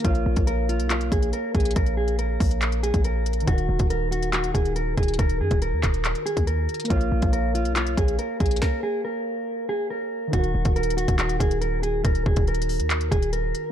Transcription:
0.00 synth keys A#3 A#4
0.04 808-style bass A#1, clean electric guitar F4, synth keys C#5, kick, closed hi-hat
0.10 synth keys F5
0.15 closed hi-hat
0.26 808-style bass A#1
0.36 808-style bass A#1, kick, closed hi-hat
0.47 clean electric guitar A#4, closed hi-hat
0.69 clean electric guitar F4, closed hi-hat
0.80 808-style bass B1, closed hi-hat
0.90 clean electric guitar F4, clap, closed hi-hat
1.01 closed hi-hat
1.12 808-style bass A#1, clean electric guitar G#4, kick, closed hi-hat
1.23 closed hi-hat
1.33 clean electric guitar A#4, closed hi-hat
1.55 808-style bass A#1, clean electric guitar G#4, kick, closed hi-hat
1.60 closed hi-hat
1.65 closed hi-hat
1.71 closed hi-hat
1.76 808-style bass A#1, clean electric guitar A#4, kick, closed hi-hat
1.86 closed hi-hat
1.97 clean electric guitar G#4
2.08 closed hi-hat
2.19 clean electric guitar A#4, closed hi-hat
2.40 808-style bass A#1, kick, open hi-hat
2.51 closed hi-hat
2.62 clap, closed hi-hat
2.72 closed hi-hat
2.83 clean electric guitar G#4, closed hi-hat
2.94 808-style bass A#1, kick, closed hi-hat
3.04 clean electric guitar A#4, closed hi-hat
3.26 closed hi-hat
3.33 closed hi-hat
3.40 synth keys D#3, closed hi-hat
3.46 808-style bass D#1, synth keys D#4 F#4, clean electric guitar F#4, kick, closed hi-hat
3.53 synth keys A#4
3.58 closed hi-hat
3.69 808-style bass D#1
3.79 808-style bass D#1, kick, closed hi-hat
3.90 clean electric guitar A#4, closed hi-hat
4.11 clean electric guitar F#4, closed hi-hat
4.23 closed hi-hat
4.33 clean electric guitar F#4, clap, closed hi-hat
4.44 closed hi-hat
4.54 808-style bass D#1, clean electric guitar G#4, kick, closed hi-hat
4.65 closed hi-hat
4.76 clean electric guitar A#4, closed hi-hat
4.97 808-style bass D#1, clean electric guitar G#4, kick, closed hi-hat
5.03 closed hi-hat
5.08 closed hi-hat
5.14 closed hi-hat
5.19 808-style bass D#1, clean electric guitar A#4, kick, closed hi-hat
5.29 closed hi-hat
5.40 808-style bass F#2, clean electric guitar G#4
5.51 808-style bass D#1, kick, closed hi-hat
5.62 clean electric guitar A#4, closed hi-hat
5.73 808-style bass D#2
5.83 808-style bass D#1, kick, clap, closed hi-hat
5.94 closed hi-hat
6.05 clap, closed hi-hat
6.15 closed hi-hat
6.26 clean electric guitar G#4, closed hi-hat
6.37 808-style bass D#2, kick, closed hi-hat
6.47 clean electric guitar A#4, closed hi-hat
6.69 closed hi-hat
6.74 closed hi-hat
6.80 closed hi-hat
6.84 synth keys A#3 A#4, closed hi-hat
6.90 808-style bass A#1, clean electric guitar F4, synth keys C#5, kick, closed hi-hat
6.96 synth keys F5
7.01 closed hi-hat
7.12 808-style bass A#1
7.22 808-style bass A#1, kick, closed hi-hat
7.33 clean electric guitar A#4, closed hi-hat
7.55 clean electric guitar F4, closed hi-hat
7.65 808-style bass B1, closed hi-hat
7.76 clean electric guitar F4, clap, closed hi-hat
7.87 closed hi-hat
7.97 808-style bass A#1, clean electric guitar G#4, kick, closed hi-hat
8.08 closed hi-hat
8.19 clean electric guitar A#4, closed hi-hat
8.40 808-style bass A#1, clean electric guitar G#4, kick, closed hi-hat
8.46 closed hi-hat
8.51 closed hi-hat
8.56 closed hi-hat
8.62 clean electric guitar A#4, kick, snare
8.83 clean electric guitar G#4
9.05 clean electric guitar A#4
9.69 clean electric guitar G#4
9.90 clean electric guitar A#4
10.28 synth keys D#3 D#4
10.33 808-style bass D#1, clean electric guitar F#4, synth keys F#4, kick, closed hi-hat
10.39 synth keys A#4
10.44 closed hi-hat
10.55 808-style bass D#1
10.65 808-style bass D#1, kick, closed hi-hat
10.76 clean electric guitar A#4, closed hi-hat
10.83 closed hi-hat
10.90 closed hi-hat
10.97 clean electric guitar F#4, closed hi-hat
11.08 808-style bass D#1, kick, closed hi-hat
11.19 clean electric guitar F#4, clap, closed hi-hat
11.29 closed hi-hat
11.40 808-style bass D#1, clean electric guitar G#4, kick, closed hi-hat
11.51 closed hi-hat
11.61 clean electric guitar A#4, closed hi-hat
11.83 clean electric guitar G#4, closed hi-hat
12.05 808-style bass D#1, clean electric guitar A#4, kick, closed hi-hat
12.15 closed hi-hat
12.26 808-style bass D#1, clean electric guitar G#4, kick
12.36 808-style bass D#1, kick, closed hi-hat
12.47 clean electric guitar A#4, closed hi-hat
12.55 closed hi-hat
12.62 closed hi-hat
12.69 open hi-hat
12.80 808-style bass D#2, closed hi-hat
12.90 clap, closed hi-hat
13.01 closed hi-hat
13.11 808-style bass D#1, clean electric guitar G#4, kick, closed hi-hat
13.22 closed hi-hat
13.33 clean electric guitar A#4, closed hi-hat
13.55 closed hi-hat

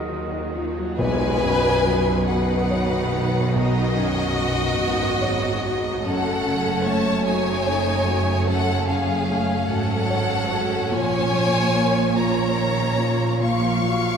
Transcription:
Already playing: double bass section D#2, grand piano D#2 F#3 F#4 G#4 D#5 F5, cello section D#3, french horn section F#3 D#4, violin section F#4, clarinet F#4, flute A#4, oboe D#5
0.07 viola section F3 D#4, violin section F#4, grand piano F#4
0.30 viola section F#3 F#4, violin section F4, grand piano D#5
0.53 viola section F3 D#4, grand piano F4, violin section F#4
0.76 viola section F#3 F#4, grand piano F#3, violin section F4
0.98 grand piano B1, double bass section B1, timpani B2, cello section B2, viola section G#3 B3, violin section B4 G#5, tam-tam
1.42 grand piano F#2, viola section F#3
1.85 viola section F3, grand piano F#3
2.28 viola section D#3 D#4, grand piano F#4, violin section B4 F#5
2.70 grand piano C#5
3.13 grand piano F#4
3.54 grand piano B1, viola section D#4, violin section F#4 D#5
3.96 grand piano F#2, viola section C#4
4.37 grand piano F#3, viola section B3
4.79 double bass section G#1, cello section G#2, viola section D#3, grand piano F#4
5.21 viola section F#3, grand piano C#5
5.62 viola section F#3, grand piano F#4
6.03 double bass section F#1, cello section F#2, grand piano F#2, viola section A3 C#4, violin section A4 F#5
6.46 grand piano C#3
6.84 grand piano A3, violin section C#5 A5
7.25 viola section D#4, grand piano F#4, violin section C#5 G#5
7.67 grand piano C#5
8.07 grand piano F#4
8.46 grand piano F#2, viola section C#4, violin section A4 F#5
8.88 grand piano C#3, violin section G#4 F5
9.29 grand piano A3
9.69 double bass section G#1, cello section G#2, viola section F#3, grand piano F#4, violin section A4 F#5
10.10 grand piano C#5
10.50 grand piano F#4
10.91 double bass section A#1, grand piano A#2, cello section A#2, viola section F3, violin section C#5 G#5
11.33 grand piano F3
11.75 grand piano A#3
12.16 viola section F3 C#4, grand piano F4, violin section C#5 A#5
12.57 viola section D#3, grand piano C#5
12.99 viola section F3, grand piano F4
13.40 grand piano A#2, viola section F3 F4, violin section F5 C#6
13.81 grand piano F3, viola section F#3

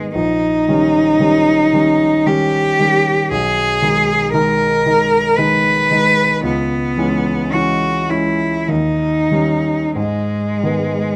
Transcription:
Already playing: grand piano D#3 G#3 B3, cello G#3
0.14 grand piano A#1, cello D#4
0.68 grand piano D#3 G3 C#4
1.20 grand piano D#3 G3 C#4
1.73 grand piano D#3 G3 C#4
2.26 grand piano D#3 G3 C#4, cello G4
2.79 grand piano D#3 G3 C#4
3.31 grand piano B1, cello G#4
3.82 grand piano D#3 G#3 D#4
4.33 grand piano D#3 G#3 D#4, cello A#4
4.86 grand piano D#3 G#3 D#4
5.38 grand piano D#3 G#3 D#4, cello B4
5.91 grand piano D#3 G#3 D#4
6.43 grand piano C#2, cello B3
6.98 grand piano E3 G#3 C#4
7.53 grand piano E3 G#3 C#4, cello F#4
8.09 grand piano E3 G#3 C#4, cello E4
8.68 grand piano D#2, cello D#4
9.31 grand piano D#3 G3 C#4
9.95 grand piano G#2, cello G#3
10.63 grand piano D#3 G#3 B3

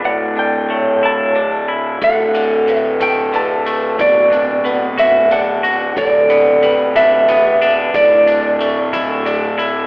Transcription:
Already playing: clean electric guitar D4
0.04 fingered electric bass D1, clean electric guitar A2 F#5, vibraphone D5
0.37 clean electric guitar D4 G5
0.70 clean electric guitar A3, vibraphone C#5
1.03 clean electric guitar E4 A5
1.36 clean electric guitar D4, vibraphone D5
1.68 clean electric guitar E4
2.02 fingered electric bass D1, clean electric guitar D2 F#5, vibraphone A4, kick, closed hi-hat
2.35 clean electric guitar D3, closed hi-hat
2.67 clean electric guitar A2, vibraphone B4, closed hi-hat
2.75 clean electric guitar E5
3.00 clean electric guitar A3 G5, kick, closed hi-hat
3.33 clean electric guitar D3 A5, vibraphone B4, closed hi-hat
3.66 clean electric guitar A3, closed hi-hat
3.99 fingered electric bass D1, clean electric guitar B2 D5, vibraphone C#6, kick, closed hi-hat
4.32 clean electric guitar D4, closed hi-hat
4.65 clean electric guitar B3, vibraphone B4, closed hi-hat
4.98 clean electric guitar F#4 E5, kick, closed hi-hat
5.31 clean electric guitar D4 F#5, vibraphone D5, closed hi-hat
5.63 clean electric guitar F#4, closed hi-hat
5.96 fingered electric bass D1, clean electric guitar G2 D5, vibraphone A4, kick, closed hi-hat
6.30 clean electric guitar B3, closed hi-hat
6.62 clean electric guitar G3, vibraphone B4, closed hi-hat
6.95 clean electric guitar D4 E5, kick, closed hi-hat
7.28 clean electric guitar B3, vibraphone B4, closed hi-hat
7.62 clean electric guitar D4, closed hi-hat
7.94 fingered electric bass D1, clean electric guitar A2 D5, vibraphone D5, kick, closed hi-hat
8.27 clean electric guitar D4, closed hi-hat
8.60 clean electric guitar A3, vibraphone C#6, closed hi-hat
8.93 clean electric guitar E4, kick, closed hi-hat
9.26 clean electric guitar D4, vibraphone D5, closed hi-hat
9.58 clean electric guitar E4, closed hi-hat

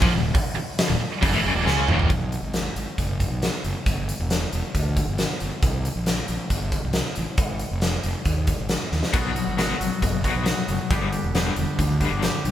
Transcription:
0.01 fingered electric bass A#1, overdriven electric guitar A#2 F3, kick
0.12 fingered electric bass D#1, overdriven electric guitar D#2 A#2
0.34 muted overdriven electric guitar stroke, muted distorted electric guitar stroke, muted fingered electric bass stroke, kick, open hi-hat
0.55 muted distorted electric guitar stroke, muted overdriven electric guitar stroke, muted fingered electric bass stroke
0.78 snare, open hi-hat
0.89 fingered electric bass D#1, overdriven electric guitar D#2 A#2
1.00 muted overdriven electric guitar stroke, muted distorted electric guitar stroke, muted fingered electric bass stroke
1.22 fingered electric bass F#1, overdriven electric guitar F#2 C#3, kick, open hi-hat
1.32 fingered electric bass A1, overdriven electric guitar A2 E3
1.43 fingered electric bass F#1, overdriven electric guitar F#2 C#3
1.54 fingered electric bass D#1, overdriven electric guitar D#2 A#2
1.65 fingered electric bass C#2, overdriven electric guitar C#3 G#3 C#4, snare
1.87 fingered electric bass D#1, overdriven electric guitar D#2 A#2 D#3, mid tom
1.99 floor tom
2.10 fingered electric bass B1, kick, closed hi-hat
2.32 closed hi-hat
2.43 fingered electric bass G#1
2.54 snare, closed hi-hat
2.76 fingered electric bass G#1, closed hi-hat
2.98 fingered electric bass F#1, kick, closed hi-hat
3.20 kick, closed hi-hat
3.30 fingered electric bass B1
3.42 snare, closed hi-hat
3.64 fingered electric bass F#1, closed hi-hat
3.86 fingered electric bass G1, kick, closed hi-hat
4.09 closed hi-hat
4.20 fingered electric bass E1
4.30 snare, closed hi-hat
4.53 fingered electric bass E1, closed hi-hat
4.74 fingered electric bass D2, kick, closed hi-hat
4.97 kick, closed hi-hat
5.07 fingered electric bass G1
5.18 snare, closed hi-hat
5.40 fingered electric bass G1, closed hi-hat
5.62 fingered electric bass C2, kick, closed hi-hat
5.85 closed hi-hat
5.96 fingered electric bass A#1
6.06 snare, closed hi-hat
6.28 fingered electric bass A#1, closed hi-hat
6.50 fingered electric bass G1, kick, closed hi-hat
6.72 kick, closed hi-hat
6.84 fingered electric bass C2
6.93 snare, closed hi-hat
7.15 fingered electric bass A1, closed hi-hat
7.38 fingered electric bass G#1, kick, closed hi-hat
7.59 closed hi-hat
7.71 fingered electric bass F1
7.82 snare, closed hi-hat
8.03 fingered electric bass F1, closed hi-hat
8.25 fingered electric bass D#2, kick, closed hi-hat
8.47 kick, closed hi-hat
8.59 fingered electric bass G#1
8.69 snare, closed hi-hat
8.92 fingered electric bass D#2, snare
9.03 snare
9.13 fingered electric bass B1, overdriven electric guitar B2 F#3 B3, clean electric guitar B2 F#3 B3 D#4 F#4, kick, closed hi-hat, crash
9.35 overdriven electric guitar B2 F#3, clean electric guitar B3 D#4 F#4, closed hi-hat
9.47 fingered electric bass G#1
9.57 overdriven electric guitar B2 F#3 B3, clean electric guitar B2 F#3 B3 D#4 F#4, snare, closed hi-hat
9.80 fingered electric bass G#1, overdriven electric guitar B2 F#3, clean electric guitar B3 D#4 F#4, closed hi-hat
10.02 fingered electric bass F#1, overdriven electric guitar B2 F#3, kick, closed hi-hat
10.24 overdriven electric guitar B2 F#3 B3, clean electric guitar B3 D#4 F#4, kick, closed hi-hat
10.35 fingered electric bass B1
10.46 overdriven electric guitar B2 F#3, clean electric guitar F#3 B3 D#4 F#4, snare, closed hi-hat
10.68 fingered electric bass F#1, overdriven electric guitar B2 F#3, closed hi-hat
10.90 fingered electric bass G1, clean electric guitar G2 D3 G3 B3 D4 G4, overdriven electric guitar G2 D3 G3, kick, closed hi-hat
11.12 overdriven electric guitar G2 D3, clean electric guitar G3 B3 D4 G4, closed hi-hat
11.24 fingered electric bass E1
11.35 clean electric guitar G2 D3 G3 B3 D4 G4, overdriven electric guitar G2 D3 G3, snare, closed hi-hat
11.56 fingered electric bass E1, overdriven electric guitar G2 D3, clean electric guitar G3 B3 D4 G4, closed hi-hat
11.79 fingered electric bass D2, overdriven electric guitar G2 D3, kick, closed hi-hat
12.00 overdriven electric guitar G2 D3 G3, clean electric guitar G3 B3 D4 G4, kick, closed hi-hat
12.12 fingered electric bass G1
12.22 overdriven electric guitar G2 D3, clean electric guitar G3 B3 D4 G4, snare, closed hi-hat
12.45 fingered electric bass B1, overdriven electric guitar G2 D3, closed hi-hat

